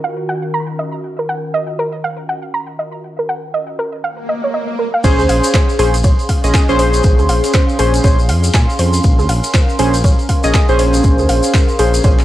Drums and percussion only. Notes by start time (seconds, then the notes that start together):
5.04 kick, closed hi-hat, crash, ride, shaker
5.19 snare, shaker
5.29 open hi-hat, ride
5.44 snare, closed hi-hat, shaker
5.54 kick, snare, clap, closed hi-hat, ride, shaker
5.69 shaker
5.79 open hi-hat, ride
5.94 closed hi-hat, shaker
6.04 kick, closed hi-hat, ride, shaker
6.19 ride, shaker
6.29 kick, open hi-hat, ride
6.44 closed hi-hat, shaker
6.54 kick, snare, clap, closed hi-hat, ride, shaker
6.69 shaker
6.79 snare, open hi-hat, ride
6.93 closed hi-hat, shaker
7.03 kick, closed hi-hat, ride, shaker
7.19 ride, shaker
7.29 open hi-hat, ride
7.44 snare, closed hi-hat, shaker
7.54 kick, snare, clap, closed hi-hat, ride, shaker
7.69 shaker
7.79 open hi-hat, ride
7.94 closed hi-hat, shaker
8.04 kick, closed hi-hat, ride, shaker
8.19 shaker
8.29 open hi-hat, ride
8.44 closed hi-hat, shaker
8.54 kick, snare, clap, closed hi-hat, ride, shaker
8.70 shaker
8.79 open hi-hat, ride
8.93 closed hi-hat, shaker
9.04 kick, closed hi-hat, ride, shaker
9.19 snare, shaker
9.29 open hi-hat, ride
9.44 snare, closed hi-hat, shaker
9.54 kick, snare, clap, closed hi-hat, ride, shaker
9.69 shaker
9.79 open hi-hat, ride
9.94 closed hi-hat, shaker
10.04 kick, closed hi-hat, ride, shaker
10.19 ride, shaker
10.29 kick, open hi-hat, ride
10.44 closed hi-hat, shaker
10.54 kick, snare, clap, closed hi-hat, ride, shaker
10.68 shaker
10.79 snare, open hi-hat, ride
10.94 closed hi-hat, shaker
11.04 kick, closed hi-hat, ride, shaker
11.18 shaker
11.29 open hi-hat, ride
11.43 closed hi-hat, ride, shaker
11.54 kick, snare, clap, closed hi-hat, ride, shaker
11.68 shaker
11.79 open hi-hat, ride
11.94 closed hi-hat, shaker
12.04 kick, closed hi-hat, ride, shaker
12.19 clap, shaker